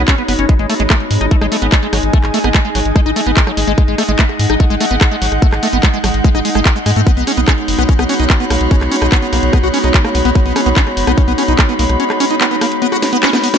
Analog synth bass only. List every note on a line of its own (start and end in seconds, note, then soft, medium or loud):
0.28 0.35 F#1 loud
0.39 0.45 F#1 medium
0.59 0.66 G#1 medium
0.80 0.86 G#1 medium
1.11 1.17 G#2 medium
1.21 1.28 G#1 medium
1.41 1.48 G#1 medium
1.62 1.69 G#1 medium
1.93 2.00 G#1 loud
2.03 2.10 G#1 medium
2.24 2.30 G#1 medium
2.44 2.51 G#1 medium
2.75 2.82 G#1 medium
2.85 2.92 G#1 medium
3.06 3.13 G#1 medium
3.26 3.33 G#1 medium
3.57 3.64 G#1 loud
3.68 3.74 G#1 medium
3.88 3.95 G#1 medium
4.09 4.15 G#1 medium
4.39 4.46 G#2 medium
4.50 4.56 G#1 medium
4.70 4.77 G#1 medium
4.91 4.97 G#1 medium
5.22 5.28 G#1 loud
5.32 5.39 G#1 medium
5.52 5.59 G#1 medium
5.73 5.80 G#1 medium
6.04 6.10 G#1 medium
6.14 6.21 G#1 medium
6.35 6.41 G#1 medium
6.55 6.62 G#1 medium
6.86 6.93 G#2 loud
6.96 7.03 G#2 medium
7.17 7.23 B1 medium
7.37 7.44 B1 medium
7.68 7.75 F#1 medium
7.78 7.85 B1 medium
7.99 8.06 B1 medium
8.20 8.26 B1 medium
8.50 8.57 B1 loud
8.61 8.67 B1 medium
8.81 8.88 B1 medium
9.02 9.08 B1 medium
9.33 9.39 B1 medium
9.43 9.50 B1 medium
9.63 9.70 B1 medium
9.84 9.91 B1 medium
10.15 10.21 B1 loud
10.25 10.32 B1 medium
10.46 10.52 B1 medium
10.66 10.73 B1 medium
10.97 11.04 F#1 loud
11.07 11.14 B1 medium
11.28 11.34 B1 medium
11.48 11.55 B1 medium
11.79 11.86 B1 loud
11.89 11.96 B1 medium